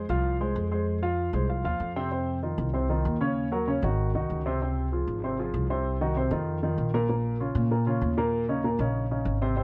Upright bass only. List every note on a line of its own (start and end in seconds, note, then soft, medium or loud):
0.09 0.53 C2 loud
0.55 1.28 F2 loud
1.33 1.63 C2 medium
1.65 1.79 D#2 medium
1.80 2.53 F2 medium
2.58 3.02 C2 loud
3.05 3.77 D#2 loud
3.82 4.12 G#1 loud
4.14 4.28 C2 medium
4.30 5.02 C#2 medium
5.07 5.51 G#1 medium
5.54 6.26 C2 loud
6.31 6.75 F2 loud
6.78 7.50 A#1 medium
7.55 7.99 A#2 loud
8.02 8.74 D#2 medium
8.79 9.22 A#1 loud
9.25 9.63 G#1 loud